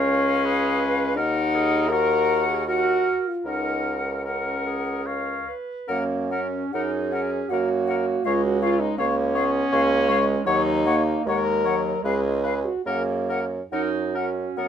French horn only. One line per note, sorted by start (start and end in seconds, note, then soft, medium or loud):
0.00 1.18 C#4 loud
1.16 1.91 D#4 loud
1.89 2.48 A#4 loud
2.49 2.67 G#4 medium
2.67 3.29 F#4 loud
3.27 3.48 F4 medium
3.46 3.98 D#4 medium
4.26 5.43 C#4 medium
5.89 6.75 C#4 medium
6.73 7.52 G#4 loud
7.51 8.26 F#4 loud
8.25 8.46 F4 loud
8.44 8.61 F#4 loud
8.62 8.81 F4 loud
8.80 8.98 D#4 loud
8.99 10.43 C#4 loud
10.46 11.25 D#4 loud
11.26 12.03 A#4 loud
12.04 12.67 G#4 loud
12.66 12.85 F#4 loud
12.86 13.40 G#4 medium
13.72 14.68 F#4 medium